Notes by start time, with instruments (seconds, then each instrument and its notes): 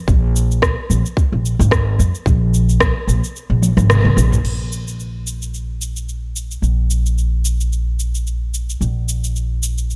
0.08 upright bass A#1, kick, cabasa
0.36 cabasa
0.52 cabasa
0.62 kick, cross-stick, cabasa
0.90 upright bass A#1, cabasa
1.06 cabasa
1.17 kick, cabasa
1.32 upright bass A#1
1.45 cabasa
1.59 upright bass G#1, cabasa
1.71 kick, cross-stick, cabasa
1.99 upright bass F2, cabasa
2.15 cabasa
2.26 upright bass A#1, kick, cabasa
2.54 cabasa
2.69 cabasa
2.80 kick, cross-stick, cabasa
3.07 upright bass A#1, cabasa
3.24 cabasa
3.36 cabasa
3.50 upright bass A#1
3.62 high tom, cabasa
3.77 upright bass G#1, cross-stick, high tom, cabasa
3.90 cross-stick, mid tom, cabasa
4.05 upright bass F2, mid tom
4.17 upright bass A#1, cabasa
4.32 mid tom, cabasa
4.44 upright bass A#1, crash, cabasa
4.72 cabasa
4.88 cabasa
5.00 cabasa
5.27 cabasa
5.42 cabasa
5.54 cabasa
5.81 cabasa
5.96 cabasa
6.09 cabasa
6.36 cabasa
6.51 cabasa
6.62 upright bass A#1, cabasa
6.90 cabasa
7.06 cabasa
7.18 cabasa
7.45 cabasa
7.61 cabasa
7.73 cabasa
8.00 cabasa
8.15 cabasa
8.27 cabasa
8.54 cabasa
8.70 cabasa
8.81 upright bass A#1, cabasa
9.09 cabasa
9.24 cabasa
9.36 cabasa
9.63 cabasa
9.78 cabasa
9.90 cabasa